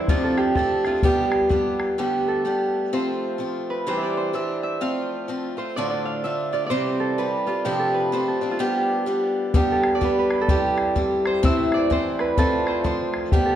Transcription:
Already playing: C4 E4 G4 A4 C5 D5 E5
0.08 F2 C3 F3 A3 C4 D4 F4, bodhran
0.24 A4
0.38 G4, bodhran
0.55 F3 A3 C4 D4 A4, bodhran
0.85 F3 A3 C4 D4 F4, bodhran
1.03 G3 B3 D4 G4, bodhran
1.32 bodhran
1.41 bodhran
1.49 G3 B3 D4 G4, bodhran
1.80 bodhran
1.98 G2 D3 G3 A3 B3 D4 G4
2.28 A4
2.45 G3 A3 B3 D4 G4
2.93 F3 A3 C4 F4 C5
3.38 F3 A3 C4 F4
3.70 B4
3.87 C3 E3 G3 D4 G4 C5
3.97 E5
4.02 D5
4.17 C5
4.33 E3 G3 D4 G4 E5
4.63 E5
4.81 F3 A3 C4 F4 F5
5.28 F3 A3 C4 F4
5.57 A3 C4 F4 C5
5.76 D2 A2 D3 A3 D4 F4 D5
5.90 D5
6.05 F5
6.24 D3 A3 D4 F4 E5
6.53 D3 A3 D4 F4 D5
6.66 C3 C5 D5
6.70 E3 G3 C4 G4
7.00 A4
7.18 E3 G3 C4 G4 B4
7.47 G3 C4 F4 G4
7.65 F2 C3 F3 A3 C4 D4 G4
7.79 A4
7.94 B4
8.12 F3 A3 C4 D4 C5
8.28 A4
8.41 F3 A3 C4 D4
8.51 F4
8.59 G3 B3 D4 G4
9.06 G3 B3 D4 G4
9.54 G3 B3 D4 G4, bodhran
9.72 A4
9.83 bodhran
9.95 D5
10.01 G3 B3 D4 G4 B4, bodhran
10.19 B4
10.31 bodhran
10.41 A4
10.48 G3 C4 E4 G4, bodhran
10.78 bodhran
10.96 G3 C4 E4 G4, bodhran
11.26 C5, bodhran
11.43 A2 E3 A3 C4 E4 E5, bodhran
11.72 D5, bodhran
11.90 E3 A3 C4 E4 C5, bodhran
12.19 B4, bodhran
12.37 F3 A3 C4 F4 A4, bodhran
12.67 C5, bodhran
12.84 F3 A3 C4 F4 C5, bodhran
13.14 bodhran
13.32 G3 B3 D4 G4, bodhran
13.45 A4

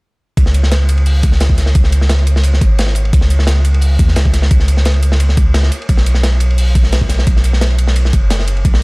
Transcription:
0.37 C#2, kick, closed hi-hat, ride
0.46 snare
0.54 closed hi-hat, ride
0.63 snare
0.72 snare, closed hi-hat, ride
0.89 closed hi-hat, ride
0.98 ride
1.06 closed hi-hat, open hi-hat
1.23 kick, closed hi-hat, ride
1.32 snare
1.40 snare, closed hi-hat, ride
1.50 kick
1.58 C#2, snare, closed hi-hat, ride
1.66 snare
1.75 C#2, kick, closed hi-hat, ride
1.84 snare
1.92 closed hi-hat, ride
2.01 snare
2.09 snare, closed hi-hat, ride
2.19 ride
2.27 closed hi-hat, ride
2.36 snare
2.43 closed hi-hat, ride
2.54 snare
2.61 G#1, kick, closed hi-hat, ride
2.79 snare, closed hi-hat, ride
2.87 snare
2.95 closed hi-hat, ride
3.05 ride
3.13 C#2, kick, closed hi-hat, ride
3.21 snare
3.30 closed hi-hat, ride
3.39 snare
3.47 snare, closed hi-hat, ride
3.65 closed hi-hat, ride
3.74 ride
3.81 closed hi-hat, open hi-hat
3.99 D#2, kick, closed hi-hat, ride
4.08 snare
4.16 C#2, snare, closed hi-hat, ride
4.25 kick
4.33 snare, closed hi-hat, ride
4.42 snare
4.51 C#2, kick, closed hi-hat, ride
4.60 snare
4.68 closed hi-hat, ride
4.77 snare
4.85 snare, closed hi-hat, ride
4.94 ride
5.03 closed hi-hat, ride
5.12 snare
5.20 closed hi-hat, ride
5.29 snare
5.37 kick, closed hi-hat, ride
5.54 snare, closed hi-hat, ride
5.63 snare
5.72 closed hi-hat, ride
5.82 ride
5.89 B1, kick, closed hi-hat, ride
5.97 snare
6.06 closed hi-hat, ride
6.14 snare
6.23 snare, closed hi-hat, ride
6.40 closed hi-hat, ride
6.50 ride
6.58 closed hi-hat, open hi-hat
6.75 kick, closed hi-hat, ride
6.84 snare
6.93 snare, closed hi-hat, ride
7.01 kick
7.09 B1, snare, closed hi-hat, ride
7.19 snare
7.27 B1, kick, closed hi-hat, ride
7.37 snare
7.44 closed hi-hat, ride
7.53 snare
7.61 snare, closed hi-hat, ride
7.70 ride
7.79 closed hi-hat, ride
7.87 snare
7.96 closed hi-hat, ride
8.05 snare
8.13 F#1, kick, closed hi-hat, ride
8.30 snare, closed hi-hat, ride
8.39 snare
8.48 closed hi-hat, ride
8.57 ride
8.65 B1, kick, closed hi-hat, ride
8.74 snare

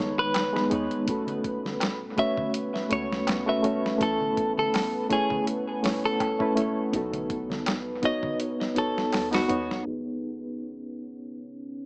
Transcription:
Already playing: D#3 G#3 B3 G#4 B4
0.00 F#1 D#4 C#5, snare
0.19 B4
0.34 snare, closed hi-hat, darbuka tek
0.53 G#3 B3 D#4 B4, snare
0.70 D#2 G#3 B3 D#4 C#5, closed hi-hat
0.91 closed hi-hat
1.06 F#1 A3 C#4 F#4, kick, closed hi-hat
1.11 A4
1.27 closed hi-hat, darbuka dum
1.44 kick, closed hi-hat
1.65 snare, darbuka dum
1.80 snare, closed hi-hat, darbuka tek
2.17 A3 C#4 F#4 C#5 E5, kick, closed hi-hat
2.37 kick, darbuka dum
2.54 closed hi-hat
2.76 snare
2.90 C#2 A3 C#4 F#4 C#5, closed hi-hat
3.12 snare
3.27 snare, closed hi-hat, darbuka tek
3.46 A3 C#4 F#4 B4 E5
3.63 E1 A3 C#4 F#4 C#5, closed hi-hat
3.86 snare
3.98 A1 A3 C#4 E4, kick, closed hi-hat
4.03 A4
4.20 darbuka dum
4.37 kick, closed hi-hat
4.58 A4, darbuka dum
4.74 snare, open hi-hat, darbuka tek
5.09 A3 C#4 E4 G#4 C#5, kick, closed hi-hat
5.30 kick, darbuka dum
5.47 closed hi-hat
5.83 E1 A3 C#4 E4 C#5, snare, open hi-hat
6.05 A4
6.20 kick, closed hi-hat, darbuka tek
6.39 A3 C#4 E4 B4, kick
6.56 E1 A3 C#4 E4 C#5, closed hi-hat
6.91 B1 B3 D#4 F#4, kick, closed hi-hat
6.96 A4
7.13 closed hi-hat, darbuka dum
7.30 kick, closed hi-hat
7.50 snare, darbuka dum
7.66 snare, closed hi-hat, darbuka tek
8.02 B3 D#4 F#4 C#5 D#5, kick, closed hi-hat
8.23 kick, darbuka dum
8.40 closed hi-hat
8.61 snare
8.75 F#1 B3 D#4 F#4 A4 C#5, closed hi-hat
8.98 snare
9.12 D#2, snare, open hi-hat, darbuka tek
9.31 B3 D#4 F#4 B4, snare, open hi-hat
9.48 D#2 B3 D#4 F#4 C#5, closed hi-hat
9.70 B1, snare
9.83 G#1 B3 C#4 D#4 G#4 C#5
9.89 B4

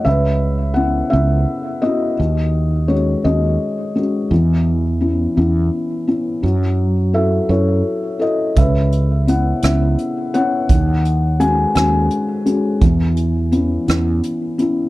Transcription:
0.04 C#2 C#3 E5
0.08 B4
0.74 B3 C#4 E4 F#5
1.10 C#2 B3 C#4 E4 E5
1.82 B3 C#4 E4 F#4 D#5
2.18 D#2 D#3
2.88 G#3 C#4 F#4 C#5
3.24 D#2 G#3 C#4 F#4 D#5
3.95 G#3 C#4 F#4
4.31 E2 E3
5.01 B3 C#4 E4
5.36 E2 B3 C#4 E4
6.07 B3 C#4 E4
6.43 F#2 F#3
7.13 E4 F#4 A4 E5
7.49 F#2 E4 F#4 A4 C#5
8.19 E4 F#4 A4 D#5
8.56 C#2 C#3 B4 E5, kick, closed hi-hat
8.92 closed hi-hat
9.27 B3 C#4 E4 F#5, closed hi-hat
9.62 C#2 B3 C#4 E4 E5, cross-stick, closed hi-hat
9.98 closed hi-hat
10.34 B3 C#4 E4 C#5 F#5, closed hi-hat
10.69 D#2 D#3, kick, closed hi-hat
11.05 closed hi-hat
11.40 G#3 C#4 F#4 G#5, closed hi-hat
11.75 D#2 G#3 C#4 F#4 G#5, cross-stick, closed hi-hat
12.10 closed hi-hat
12.46 G#3 C#4 F#4, closed hi-hat
12.81 E2 E3, kick, closed hi-hat
13.17 closed hi-hat
13.52 B3 C#4 E4, closed hi-hat
13.88 E2 B3 C#4 E4, cross-stick, closed hi-hat
14.23 closed hi-hat
14.58 B3 C#4 E4, closed hi-hat

